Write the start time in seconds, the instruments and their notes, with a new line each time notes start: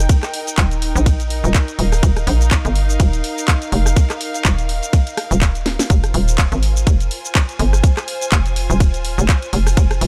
Already playing: string section D#4 A#4 G5
0.09 kick, closed hi-hat, ride, shaker
0.23 cross-stick, clap, closed hi-hat, shaker
0.34 open hi-hat
0.47 closed hi-hat, shaker
0.58 fm bass D#1, kick, clap, closed hi-hat, ride, shaker
0.71 closed hi-hat, shaker
0.82 open hi-hat
0.96 fm bass A#1, shaker
1.06 kick, closed hi-hat, ride, shaker
1.20 closed hi-hat, shaker
1.30 open hi-hat
1.44 fm bass D#1, shaker
1.54 kick, clap, closed hi-hat, ride, shaker
1.68 closed hi-hat, shaker
1.79 fm bass D#1, string section F5, open hi-hat
1.92 cross-stick, open hi-hat, shaker
2.03 fm bass D#1, kick, closed hi-hat, ride, shaker
2.17 cross-stick, closed hi-hat, shaker
2.27 fm bass A#1, open hi-hat
2.41 closed hi-hat, shaker
2.51 kick, clap, closed hi-hat, ride, shaker
2.65 fm bass G1, closed hi-hat, shaker
2.76 open hi-hat
2.90 shaker
3.00 fm bass D#1, kick, closed hi-hat, ride, shaker
3.13 closed hi-hat, shaker
3.24 open hi-hat
3.38 shaker
3.48 kick, clap, closed hi-hat, ride, shaker
3.62 closed hi-hat, shaker
3.72 fm bass F1, open hi-hat
3.86 cross-stick, shaker
3.96 kick, closed hi-hat, ride, shaker
4.10 cross-stick, clap, closed hi-hat, shaker
4.21 open hi-hat
4.34 closed hi-hat, shaker
4.45 fm bass D#1, kick, clap, closed hi-hat, ride, shaker
4.58 closed hi-hat, shaker
4.69 open hi-hat
4.83 closed hi-hat, shaker
4.93 kick, closed hi-hat, ride, shaker
5.07 closed hi-hat, shaker
5.17 cross-stick, open hi-hat
5.31 fm bass D#1, closed hi-hat, shaker
5.41 kick, clap, closed hi-hat, ride, shaker
5.55 closed hi-hat, shaker
5.66 snare, open hi-hat
5.79 snare, open hi-hat, shaker
5.90 fm bass F1, string section F4, kick, closed hi-hat, ride, shaker
6.04 string section C5, cross-stick, closed hi-hat, shaker
6.14 fm bass D#1, open hi-hat
6.28 closed hi-hat, shaker
6.33 string section G#5
6.38 kick, clap, closed hi-hat, ride, shaker
6.52 fm bass G#1, closed hi-hat, shaker
6.63 open hi-hat
6.77 shaker
6.87 fm bass F1, kick, closed hi-hat, ride, shaker
7.00 closed hi-hat, shaker
7.11 open hi-hat
7.25 shaker
7.35 kick, clap, closed hi-hat, ride, shaker
7.49 closed hi-hat, shaker
7.59 fm bass G1, open hi-hat
7.73 cross-stick, shaker
7.84 kick, closed hi-hat, ride, shaker
7.97 cross-stick, clap, closed hi-hat, shaker
8.08 open hi-hat
8.21 closed hi-hat, shaker
8.32 fm bass F1, kick, clap, closed hi-hat, ride, shaker
8.46 closed hi-hat, shaker
8.56 open hi-hat
8.70 fm bass D#1, shaker
8.80 kick, closed hi-hat, ride, shaker
8.94 closed hi-hat, shaker
9.05 open hi-hat
9.18 fm bass F1, shaker
9.29 kick, clap, closed hi-hat, ride, shaker
9.42 closed hi-hat, shaker
9.53 fm bass F1, open hi-hat
9.67 cross-stick, open hi-hat, shaker
9.77 fm bass F1, kick, closed hi-hat, ride, shaker
9.91 cross-stick, closed hi-hat, shaker
10.01 fm bass D#1, open hi-hat